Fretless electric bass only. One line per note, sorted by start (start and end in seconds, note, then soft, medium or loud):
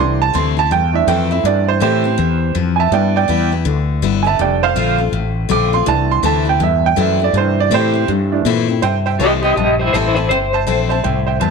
0.00 0.33 C2 medium
0.35 0.70 D2 medium
0.71 1.07 E2 medium
1.07 1.43 F2 loud
1.44 1.80 G2 medium
1.82 2.17 A2 medium
2.19 2.54 E2 medium
2.55 2.91 F2 loud
2.92 3.27 G2 medium
3.29 3.64 E2 medium
3.66 4.01 D2 loud
4.02 4.38 G1 loud
4.39 4.75 F1 medium
4.76 5.12 A#1 medium
5.12 5.48 A1 medium
5.50 5.86 A#1 loud
5.87 6.22 C2 medium
6.23 6.59 D2 medium
6.60 6.96 E2 loud
6.98 7.33 F#2 loud
7.33 7.70 G2 medium
7.71 8.07 A2 loud
8.08 8.44 G2 loud
8.45 8.81 A#2 loud
8.82 9.18 G2 medium
9.20 9.55 C2 medium
9.57 9.92 A#1 medium
9.94 10.29 A1 loud
10.30 10.66 G1 medium
10.67 11.03 A#1 medium
11.05 11.41 C2 medium
11.42 11.51 E2 loud